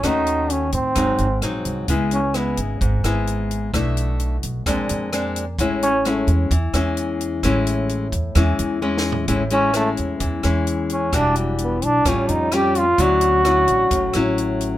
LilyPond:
<<
  \new Staff \with { instrumentName = "Trombone" } { \time 4/4 \key a \major \tempo 4 = 130 dis'4 cis'8 c'4. r4 | r8 cis'8 b8 r2 r8 | r1 | r8 cis'8 a8 r2 r8 |
r1 | r8 cis'8 a8 r2 cis'8 | d'8 fis8 b8 d'8 cis'8 dis'8 g'8 eis'8 | fis'2. r4 | }
  \new Staff \with { instrumentName = "Nylon-string guitar" } { \time 4/4 \key a \major << { <a cis' fis'>4. r8 <fis bis dis'>8 r8 <fis bis dis'>4 | <gis b e'>8 r8 <gis b e'>4. <gis b e'>4. | <a d' e'>4. r8 <aes c' d'>4 <aes c' d'>8 r8 | <gis cis' e'>8 r8 <gis cis' e'>4 r8 <gis cis' e'>4. |
<gis cis' e'>4. r8 <gis cis' e'>4 <gis cis' e'>4 | <gis cis' e'>8 <gis cis' e'>8 <gis cis' e'>4. <gis cis' e'>4. | <g d' fis'>4. r8 <g cis' eis'>4 <g cis' eis'>8 r8 | <fis cis' e'>4 <fis cis' e'>4. <fis cis' e'>4. | } \\ { dis2 gis,2 | cis2 gis,2 | b,2 bes,2 | a,2 e2 |
a,2 e2 | a,2 e2 | e2 a,2 | d2 a,2 | } >> }
  \new Staff \with { instrumentName = "Upright bass" } { \clef bass \time 4/4 \key a \major dis,4. a,8 gis,,8 gis,,8 bes,,8 bis,,8 | cis,4. gis,,8 gis,,8 gis,,4. | b,,4. b,,8 bes,,8 f,4. | a,,4. e,8 e,8 e,4. |
a,,4. e,8 e,8 e,4. | a,,4. e,8 e,8 e,4. | e,,4. b,,8 a,,8 eis,4. | d,4. a,,8 a,,8 a,,4. | }
  \new DrumStaff \with { instrumentName = "Drums" } \drummode { \time 4/4 <hh bd ss>8 hh8 hh8 <hh bd>8 <hh bd ss>8 hh8 <hh ss>8 hh8 | <hh bd>8 hh8 <hh ss>8 hh8 <hh bd>8 <hh ss>8 hh8 hh8 | <hh bd ss>8 hh8 hh8 hh8 <hh bd ss>8 hh8 <hh ss>8 hh8 | <hh bd>8 hh8 <hh ss>8 hh8 <hh bd>8 <hh ss>8 hh8 hh8 |
<hh bd ss>8 hh8 hh8 <hh bd>8 <hh bd ss>8 hh8 \tuplet 3/2 { tommh8 sn8 tomfh8 } | <hh bd>8 hh8 <hh ss>8 hh8 <hh bd>8 <hh ss>8 hh8 hh8 | <hh bd ss>8 hh8 hh8 hh8 <hh bd ss>8 hh8 <hh ss>8 hh8 | <hh bd>8 hh8 <hh ss>8 hh8 <hh bd>8 <hh ss>8 hh8 hh8 | }
>>